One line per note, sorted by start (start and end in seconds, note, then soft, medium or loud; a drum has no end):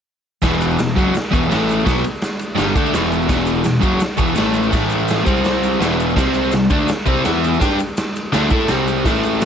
0.42 0.76 E1 loud
0.42 0.77 E2 loud
0.42 0.78 B2 loud
0.42 0.79 E3 loud
0.42 kick loud
0.42 snare loud
0.42 ride loud
0.42 shaker medium
0.53 shaker soft
0.61 ride medium
0.61 shaker medium
0.71 shaker soft
0.78 0.96 E1 medium
0.78 0.93 E2 medium
0.78 0.93 B2 medium
0.78 snare loud
0.78 ride loud
0.78 shaker medium
0.96 1.13 F#1 loud
0.96 1.14 F#2 loud
0.96 1.14 C#3 loud
0.96 1.14 F#3 loud
0.96 kick loud
0.96 ride medium
0.96 shaker medium
1.14 muted overdriven electric guitar stroke medium
1.14 muted picked electric bass stroke soft
1.14 snare loud
1.14 ride loud
1.14 shaker medium
1.31 1.50 E1 medium
1.31 1.49 E2 medium
1.31 1.48 B2 medium
1.31 1.49 E3 medium
1.31 kick loud
1.31 ride medium
1.31 shaker medium
1.43 shaker soft
1.49 1.84 A1 loud
1.49 1.84 A2 medium
1.49 1.85 E3 loud
1.49 1.86 A3 loud
1.49 snare loud
1.49 ride loud
1.49 shaker medium
1.69 ride medium
1.69 shaker medium
1.80 shaker soft
1.85 2.03 B1 loud
1.85 2.03 B2 loud
1.85 2.03 F#3 loud
1.85 2.04 B3 loud
1.85 kick loud
1.85 snare loud
1.85 ride loud
1.85 shaker medium
1.98 shaker soft
2.04 ride medium
2.04 shaker medium
2.15 shaker soft
2.22 snare loud
2.22 ride loud
2.22 shaker medium
2.39 ride medium
2.39 shaker medium
2.56 2.75 G1 medium
2.56 2.74 G2 loud
2.56 2.74 D3 loud
2.56 2.75 G3 loud
2.56 snare loud
2.56 ride loud
2.56 shaker medium
2.76 2.92 D2 medium
2.76 2.93 D3 medium
2.76 2.93 A3 loud
2.76 2.94 D4 loud
2.76 kick loud
2.76 ride medium
2.76 shaker medium
2.86 shaker soft
2.93 3.28 E1 medium
2.93 3.27 E2 medium
2.93 3.28 B2 loud
2.93 3.29 E3 loud
2.93 snare loud
2.93 ride loud
2.93 shaker loud
3.12 ride medium
3.12 shaker medium
3.22 shaker soft
3.29 3.63 E1 loud
3.29 3.63 E2 loud
3.29 3.63 B2 loud
3.29 3.66 E3 loud
3.29 kick loud
3.29 snare loud
3.29 crash loud
3.29 shaker medium
3.38 shaker soft
3.46 ride medium
3.46 shaker medium
3.54 shaker soft
3.64 3.82 E1 medium
3.64 3.79 E2 medium
3.64 3.79 B2 medium
3.64 snare loud
3.64 ride loud
3.64 shaker loud
3.80 4.00 F#1 loud
3.80 3.99 F#2 medium
3.80 4.00 C#3 medium
3.80 4.00 F#3 loud
3.80 kick loud
3.80 ride medium
3.80 shaker medium
4.00 muted overdriven electric guitar stroke medium
4.00 muted picked electric bass stroke soft
4.00 snare loud
4.00 ride medium
4.00 shaker loud
4.17 4.36 E1 loud
4.17 4.36 E2 medium
4.17 4.35 B2 medium
4.17 4.35 E3 loud
4.17 kick loud
4.17 ride medium
4.17 shaker medium
4.27 shaker soft
4.35 4.71 A1 loud
4.35 4.69 A2 loud
4.35 4.71 E3 medium
4.35 4.72 A3 loud
4.35 snare loud
4.35 ride loud
4.35 shaker loud
4.53 ride medium
4.53 shaker medium
4.63 shaker soft
4.71 5.23 A1 loud
4.71 5.23 A2 loud
4.71 5.25 E3 loud
4.71 5.26 A3 loud
4.71 kick loud
4.71 ride loud
4.71 shaker medium
4.75 snare loud
4.89 ride medium
4.89 shaker medium
4.99 shaker soft
5.08 snare loud
5.08 ride loud
5.08 shaker medium
5.17 shaker soft
5.24 5.77 C2 loud
5.24 5.79 C3 loud
5.24 5.80 G3 loud
5.24 5.80 C4 medium
5.24 kick loud
5.24 ride medium
5.24 shaker medium
5.37 shaker soft
5.44 snare loud
5.44 ride loud
5.44 shaker medium
5.55 shaker soft
5.63 ride medium
5.63 shaker medium
5.73 shaker soft
5.79 6.14 E1 medium
5.79 6.15 E2 medium
5.79 6.16 B2 loud
5.79 6.16 E3 medium
5.79 snare loud
5.79 ride medium
5.79 shaker loud
5.91 shaker soft
6.00 ride medium
6.00 shaker medium
6.10 shaker soft
6.16 6.50 C2 loud
6.16 6.51 C3 loud
6.16 6.52 G3 loud
6.16 6.53 C4 loud
6.16 kick loud
6.16 snare loud
6.16 crash loud
6.16 shaker medium
6.34 ride medium
6.34 shaker medium
6.44 shaker soft
6.51 6.70 C2 medium
6.51 6.67 C3 medium
6.51 6.67 G3 medium
6.51 snare loud
6.51 ride loud
6.51 shaker loud
6.70 6.88 D2 loud
6.70 6.88 D3 medium
6.70 6.89 A3 medium
6.70 6.89 D4 loud
6.70 kick loud
6.70 ride medium
6.70 shaker medium
6.88 muted overdriven electric guitar stroke medium
6.88 muted picked electric bass stroke soft
6.88 snare loud
6.88 ride loud
6.88 shaker loud
7.06 7.24 C2 loud
7.06 7.24 C3 medium
7.06 7.24 G3 medium
7.06 7.25 C4 loud
7.06 kick loud
7.06 ride medium
7.06 shaker medium
7.16 shaker soft
7.25 7.59 E2 loud
7.25 7.60 E3 loud
7.25 7.60 B3 loud
7.25 7.61 E4 loud
7.25 snare loud
7.25 ride loud
7.25 shaker loud
7.44 ride medium
7.44 shaker medium
7.54 shaker soft
7.60 7.78 G2 loud
7.60 7.78 G3 loud
7.60 7.79 D4 loud
7.60 7.79 G4 loud
7.60 kick loud
7.60 snare loud
7.60 ride loud
7.60 shaker medium
7.70 shaker soft
7.79 ride medium
7.79 shaker medium
7.89 shaker soft
7.97 snare loud
7.97 ride loud
7.97 shaker loud
8.16 ride medium
8.16 shaker medium
8.33 8.51 D2 loud
8.33 8.51 D3 loud
8.33 8.49 A3 loud
8.33 8.50 D4 loud
8.33 snare loud
8.33 ride loud
8.33 shaker medium
8.50 8.68 A2 medium
8.50 8.68 A3 medium
8.50 8.68 E4 loud
8.50 8.69 A4 loud
8.50 kick loud
8.50 ride medium
8.50 shaker medium
8.60 shaker soft
8.67 9.03 C2 loud
8.67 9.04 C3 loud
8.67 9.05 G3 loud
8.67 9.05 C4 loud
8.67 snare loud
8.67 ride loud
8.67 shaker medium
8.87 ride medium
8.87 shaker medium
8.97 shaker soft
9.05 9.39 A1 loud
9.05 9.41 A2 loud
9.05 9.42 E3 loud
9.05 9.42 A3 loud
9.05 kick loud
9.05 snare loud
9.05 crash loud
9.05 shaker medium
9.15 shaker soft
9.23 ride medium
9.23 shaker medium
9.34 shaker soft
9.41 9.45 A2 medium
9.41 ride loud
9.41 shaker medium